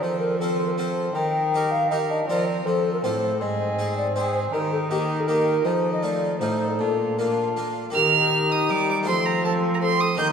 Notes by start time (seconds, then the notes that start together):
0.02 F3 C4 A4 C5
0.20 A#4
0.39 C4 F4 A4
0.66 A#4
0.77 C4 F4 A4 C5
1.15 D#3 D#4 A#4 G5
1.54 D#4 G4 A#4
1.71 F5
1.90 D#4 G4 A#4 D#5
2.10 D4 D#5
2.27 F3 C4 F4 A#4 D5
2.47 C5
2.65 F3 C4 A4
2.93 A#4
3.03 A2 C4 F4 A4 C5
3.40 G#2 C4 G#4 D#5
3.79 C4 D#4 G#4
3.97 D5
4.16 C4 D#4 G#4 C5
4.34 C5
4.53 D#3 D#4 G4 A#4
4.72 A4
4.90 A#3 D#4 G4
5.19 A4
5.28 A#3 D#4 G4 A#4
5.65 F3 D#4 A4 C5
5.93 D#5
6.03 A3 D#4 F4 D5
6.39 A2 A3 D#4 F4 A4 C5
6.69 A4
6.79 A#2 D4 F4 A4
7.19 A#3 D4 F4 A#4
7.57 A#3 D4 F4
7.90 D#3 A#3 G4
7.95 D#4 G4 F6
8.52 D#6
8.69 G3 D6
8.90 D6
9.03 F3 A3 F4 C5
9.07 F3 C4 A4 C6
9.26 A#5
9.44 C4 A4 A5
9.74 A#5
9.82 C4 A4 C6
10.01 D#6
10.15 D#3 A#3 D#4 G4 D#5 G6
10.19 D#3 A#4